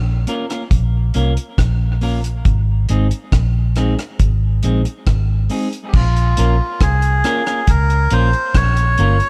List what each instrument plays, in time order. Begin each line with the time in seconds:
Already playing: fingered electric bass A#1
0.27 clean electric guitar A#3 C#4 F4 A#4, closed hi-hat
0.50 clean electric guitar A#3 C#4 F4 A#4, cross-stick, closed hi-hat
0.71 fingered electric bass A#1, kick, closed hi-hat
1.14 fingered electric bass C2, clean electric guitar A#3 C#4 F4 A#4, closed hi-hat
1.37 closed hi-hat
1.58 fingered electric bass A#1, kick, cross-stick, closed hi-hat
2.01 clean electric guitar A#3 C#4 F4 A#4, open hi-hat
2.24 closed hi-hat
2.45 fingered electric bass G#1, kick, closed hi-hat
2.89 fingered electric bass G#1, clean electric guitar G#3 C4 D#4 G#4, closed hi-hat
3.11 closed hi-hat
3.32 fingered electric bass A#1, kick, cross-stick, closed hi-hat
3.76 clean electric guitar G#3 C4 D#4 G#4, cross-stick, closed hi-hat
3.99 muted clean electric guitar stroke, cross-stick, closed hi-hat
4.20 fingered electric bass G#1, kick, closed hi-hat
4.63 fingered electric bass A#1, clean electric guitar G#3 C4 D#4 G#4, closed hi-hat
4.85 muted clean electric guitar stroke, closed hi-hat
5.07 fingered electric bass G#1, kick, cross-stick, closed hi-hat
5.50 clean electric guitar G#3 C4 D#4 G#4, open hi-hat
5.73 closed hi-hat
5.88 melodica G4
5.93 fingered electric bass A#1, melodica F4, kick, crash
6.17 closed hi-hat
6.37 fingered electric bass A#1, clean electric guitar A#3 C#4 F4 A#4, closed hi-hat
6.80 fingered electric bass C2, melodica G#4, kick, cross-stick, closed hi-hat
7.02 closed hi-hat
7.24 clean electric guitar A#3 C#4 F4 A#4, cross-stick, closed hi-hat
7.46 clean electric guitar A#3 C#4 F4 A#4, cross-stick, closed hi-hat
7.67 fingered electric bass C#2, melodica A#4, kick, closed hi-hat
7.90 closed hi-hat
8.10 fingered electric bass A#1, clean electric guitar A#3 C#4 F4 A#4, melodica C5, closed hi-hat
8.33 closed hi-hat
8.55 fingered electric bass A#1, melodica C#5, kick, cross-stick, closed hi-hat
8.77 closed hi-hat
8.98 fingered electric bass G1, clean electric guitar A#3 C#4 F4 A#4, closed hi-hat
9.20 closed hi-hat